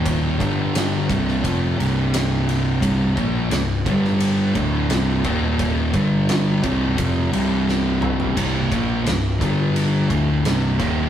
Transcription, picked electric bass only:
\new Staff \with { instrumentName = "Picked electric bass" } { \clef bass \time 4/4 \key c \dorian \tempo 4 = 87 ees,,8 g,,4 c,,8 f,,8 c,,4. | c,,8 bes,,8 c,,8 g,,4 d,,8 c,,8 ees,,8~ | ees,,8 g,,4 c,,8 f,,8 c,,4. | c,,8 bes,,8 c,,8 g,,4 d,,8 c,,8 ees,,8 | }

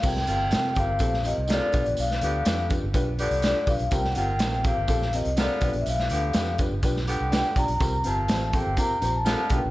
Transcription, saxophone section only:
\new Staff \with { instrumentName = "Saxophone section" } { \time 4/4 \key c \dorian \tempo 4 = 124 r8 <c bes f'>4 <c bes g'>4 r8 <d ces' f'>8. r16 | r8 <d b g'>4 r4 <d b g'>4 r8 | r8 <c bes f'>4 <c bes g'>4 r8 <d ces' f'>8. r16 | r8 <d b g'>4 r4 <d b g'>4 r8 |
r8 <c bes f'>4 <c bes g'>4 r8 <d ces' f'>8. r16 | }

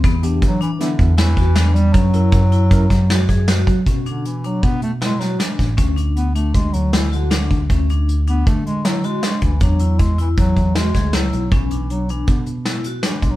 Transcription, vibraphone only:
\new Staff \with { instrumentName = "Vibraphone" } { \time 5/4 \key fis \phrygian \tempo 4 = 157 b8 d'4 d'4 r8 e'8 fis'8 d'4 | cis'8 e'4 e'4 r8 fis'8 gis'8 fis'4 | \key b \dorian cis'8 d'4 d'4 r8 e'8 fis'8 d'4 | cis'8 d'4 d'4 r8 e'8 fis'8 d'4 |
cis'8 d'4 d'4 r8 e'8 fis'8 d'4 | d'8 e'4 e'4 r8 fis'8 gis'8 e'4 | cis'8 d'4 d'4 r8 e'8 fis'8 d'4 | }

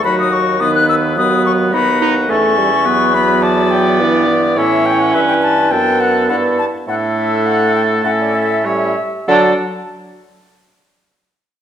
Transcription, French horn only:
\new Staff \with { instrumentName = "French horn" } { \clef bass \time 4/4 \key d \major \tempo 4 = 104 fis4 dis4 fis4 b4 | a8 g8 fis2 e8 e8~ | e2 b4. r8 | a2. g8 r8 |
fis8 r2. r8 | }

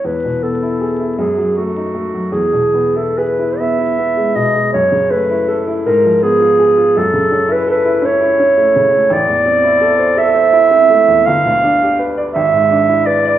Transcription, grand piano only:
\new Staff \with { instrumentName = "Grand piano" } { \time 6/8 \key e \major \tempo 4. = 54 e,16 b,16 b16 e'16 gis'16 e'16 fis,16 fis16 a16 dis'16 a16 fis16 | e,16 b,16 b16 e'16 gis'16 e'16 b16 e'16 b16 gis16 b,16 gis16 | fis,16 cis16 a16 e'16 a'16 e'16 aes,16 f16 ces'16 f'16 aes'16 f'16 | fis,16 cis16 cis'16 e'16 a'16 e'16 cis'16 e'16 cis'16 a16 cis16 a16 |
\key a \minor a,,16 e,16 c'16 e'16 a'16 c''16 a'16 c''16 e'16 c'16 a16 e,16 | g,,16 d,16 d'16 g'16 b'16 d''16 gis,,16 gis,16 d'16 e'16 b'16 d''16 | }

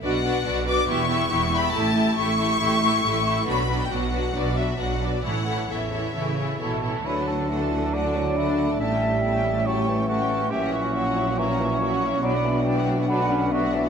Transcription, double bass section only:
\new Staff \with { instrumentName = "Double bass section" } { \clef bass \time 4/4 \key d \major \tempo 4 = 139 b,,4 b,,4 e,,4 e,,4 | a,,4 a,,4 a,,4 a,,4 | b,,4 b,,4 b,,4 b,,4 | a,,4 a,,4 a,,4 a,,4 |
d,1 | a,,1 | ais,,1 | b,,1 | }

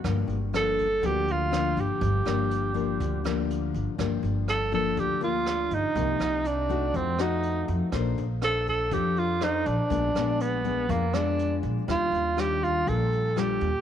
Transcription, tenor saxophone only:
\new Staff \with { instrumentName = "Tenor saxophone" } { \time 4/4 \key g \minor \tempo 4 = 122 r4 a'4 g'8 f'4 g'8~ | g'2.~ g'8 r8 | r4 a'8 a'8 g'8 f'4 ees'8~ | ees'4 d'4 c'8 ees'4 r8 |
r4 a'8 a'8 g'8 f'8 ees'8 d'8~ | d'4 ces'4 bes8 d'4 r8 | f'4 g'8 f'8 a'4 g'4 | }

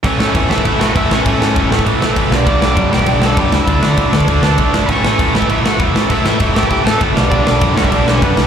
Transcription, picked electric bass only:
\new Staff \with { instrumentName = "Picked electric bass" } { \clef bass \time 4/4 \key a \mixolydian \tempo 4 = 198 a,,8 a,,8 e,8 a,,8 a,,8 a,,8 e,8 a,,8 | a,,8 a,8 e,,8 a,8 a,,8 a,,8 g,,8 b,,8 | b,,8 b,,8 fis,8 b,,8 b,,8 b,,8 fis,8 cis,8 | d,8 d8 a,,8 d8 d,8 d,8 b,,8 g,,8 |
a,,8 a,,8 e,8 a,,8 a,,8 a,,8 e,8 a,,8 | a,,8 a,8 e,,8 a,8 a,,8 a,,8 g,,8 b,,8 | b,,8 b,,8 fis,8 b,,8 b,,8 b,,8 fis,8 b,,8 | }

